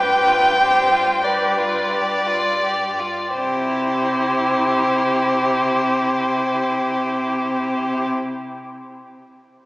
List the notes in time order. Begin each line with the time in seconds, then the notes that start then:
Already playing: G2 G4 B4 G5
0.28 F4
0.58 G4 C5
0.92 F4
1.22 G4 B4 D5
1.58 F4
1.92 G4
2.27 F4
2.64 G4
3.00 F4
3.34 C3 E4 G4 C5